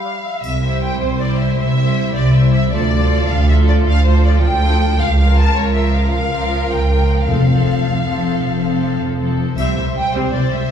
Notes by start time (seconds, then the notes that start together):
Already playing: G3 G4 F5 B5
0.05 D5
0.24 E5
0.43 C2 E5, triangle
0.62 G3 E4 C5 E5
0.82 G5
1.00 C2 C5
1.19 G3 E4 C5 D5
1.39 E5
1.58 C2 E5
1.77 G3 E4 C5
2.15 C2 D5
2.34 G3 E4 C5 E5
2.53 E5
2.72 D2 F3 F4 A4 D5
2.91 F3 F4 A4
3.29 D2 F5
3.49 F3 F4 A4 E5
3.68 D5
3.86 D2 F5
4.05 F3 F4 A4 C5
4.25 D5
4.43 D2 G5
4.62 F3 F4 A4
5.00 C#2 F5
5.18 F3 F4 A#4 F5
5.37 A5
5.56 C#2 C#5
5.75 F3 F4 A#4 E5
5.94 F5
6.13 C#2 F5
6.31 F3 F4 A#4
6.69 C#2 G5
6.89 F3 F4 A#4
7.26 F1 F2 F3 C4 A4 F5
7.46 F3 C4 A4
7.85 F1 F2
8.04 F3 C4 A4
8.42 F1 F2
8.61 F3 C4 A4
9.00 F1 F2
9.18 F3 C4 A4
9.57 C2 G3 C4 C5 E5, triangle
9.76 C2 E3 G3 E5
9.94 C2 G3 G5
10.14 C2 G3 C4 C5
10.33 C2 E3 G3 D5
10.52 C2 G3 E5